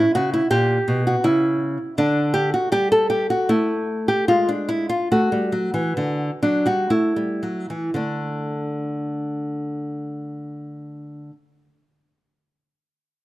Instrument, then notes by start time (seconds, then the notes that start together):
nylon-string guitar
Already playing: E4
0.15 C#3 F#4
0.34 E4
0.51 A#2 G4
0.88 B2
1.07 F#4
1.24 C#3 E4
1.98 D3 D4
2.34 G4
2.54 F#4
2.72 G3 G4
2.92 A4
3.10 G4
3.30 F#4
3.49 A3 E4
4.08 G4
4.28 G#3 F4
4.49 D4
4.69 E4
4.89 F4
5.12 A3 F#4
5.32 G3
5.52 F#3
5.74 E3
5.97 D3
6.43 F#3 D4
6.66 G3 F#4
6.90 A3 E4
7.16 G3
7.43 F#3
7.70 E3
7.94 D3 A3 D4